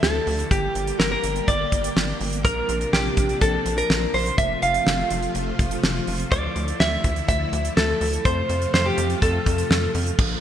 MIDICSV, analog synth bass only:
0, 0, Header, 1, 2, 480
1, 0, Start_track
1, 0, Tempo, 483871
1, 506, Time_signature, 4, 2, 24, 8
1, 10320, End_track
2, 0, Start_track
2, 0, Title_t, "Analog synth bass"
2, 0, Program_c, 0, 38
2, 27, Note_on_c, 0, 38, 105
2, 195, Note_off_c, 0, 38, 0
2, 267, Note_on_c, 0, 38, 102
2, 434, Note_off_c, 0, 38, 0
2, 507, Note_on_c, 0, 31, 105
2, 674, Note_off_c, 0, 31, 0
2, 746, Note_on_c, 0, 31, 99
2, 914, Note_off_c, 0, 31, 0
2, 986, Note_on_c, 0, 31, 103
2, 1154, Note_off_c, 0, 31, 0
2, 1226, Note_on_c, 0, 31, 100
2, 1394, Note_off_c, 0, 31, 0
2, 1467, Note_on_c, 0, 31, 108
2, 1635, Note_off_c, 0, 31, 0
2, 1709, Note_on_c, 0, 31, 97
2, 1876, Note_off_c, 0, 31, 0
2, 1946, Note_on_c, 0, 31, 102
2, 2114, Note_off_c, 0, 31, 0
2, 2187, Note_on_c, 0, 31, 102
2, 2426, Note_on_c, 0, 34, 112
2, 2441, Note_off_c, 0, 31, 0
2, 2594, Note_off_c, 0, 34, 0
2, 2667, Note_on_c, 0, 34, 100
2, 2834, Note_off_c, 0, 34, 0
2, 2906, Note_on_c, 0, 34, 104
2, 3074, Note_off_c, 0, 34, 0
2, 3147, Note_on_c, 0, 34, 98
2, 3315, Note_off_c, 0, 34, 0
2, 3387, Note_on_c, 0, 34, 113
2, 3555, Note_off_c, 0, 34, 0
2, 3626, Note_on_c, 0, 34, 99
2, 3794, Note_off_c, 0, 34, 0
2, 3866, Note_on_c, 0, 34, 102
2, 4034, Note_off_c, 0, 34, 0
2, 4105, Note_on_c, 0, 34, 102
2, 4274, Note_off_c, 0, 34, 0
2, 4346, Note_on_c, 0, 29, 100
2, 4514, Note_off_c, 0, 29, 0
2, 4587, Note_on_c, 0, 29, 96
2, 4754, Note_off_c, 0, 29, 0
2, 4827, Note_on_c, 0, 29, 108
2, 4995, Note_off_c, 0, 29, 0
2, 5067, Note_on_c, 0, 29, 99
2, 5234, Note_off_c, 0, 29, 0
2, 5306, Note_on_c, 0, 29, 103
2, 5474, Note_off_c, 0, 29, 0
2, 5548, Note_on_c, 0, 29, 98
2, 5715, Note_off_c, 0, 29, 0
2, 5785, Note_on_c, 0, 29, 105
2, 5954, Note_off_c, 0, 29, 0
2, 6025, Note_on_c, 0, 29, 98
2, 6193, Note_off_c, 0, 29, 0
2, 6266, Note_on_c, 0, 38, 109
2, 6434, Note_off_c, 0, 38, 0
2, 6505, Note_on_c, 0, 38, 96
2, 6674, Note_off_c, 0, 38, 0
2, 6746, Note_on_c, 0, 38, 106
2, 6914, Note_off_c, 0, 38, 0
2, 6987, Note_on_c, 0, 38, 96
2, 7155, Note_off_c, 0, 38, 0
2, 7227, Note_on_c, 0, 38, 102
2, 7395, Note_off_c, 0, 38, 0
2, 7466, Note_on_c, 0, 38, 104
2, 7634, Note_off_c, 0, 38, 0
2, 7706, Note_on_c, 0, 38, 100
2, 7874, Note_off_c, 0, 38, 0
2, 7945, Note_on_c, 0, 38, 108
2, 8113, Note_off_c, 0, 38, 0
2, 8186, Note_on_c, 0, 41, 114
2, 8354, Note_off_c, 0, 41, 0
2, 8425, Note_on_c, 0, 41, 100
2, 8594, Note_off_c, 0, 41, 0
2, 8666, Note_on_c, 0, 41, 106
2, 8834, Note_off_c, 0, 41, 0
2, 8906, Note_on_c, 0, 41, 106
2, 9074, Note_off_c, 0, 41, 0
2, 9147, Note_on_c, 0, 41, 111
2, 9315, Note_off_c, 0, 41, 0
2, 9388, Note_on_c, 0, 41, 105
2, 9555, Note_off_c, 0, 41, 0
2, 9626, Note_on_c, 0, 41, 106
2, 9794, Note_off_c, 0, 41, 0
2, 9866, Note_on_c, 0, 41, 108
2, 10034, Note_off_c, 0, 41, 0
2, 10106, Note_on_c, 0, 34, 104
2, 10274, Note_off_c, 0, 34, 0
2, 10320, End_track
0, 0, End_of_file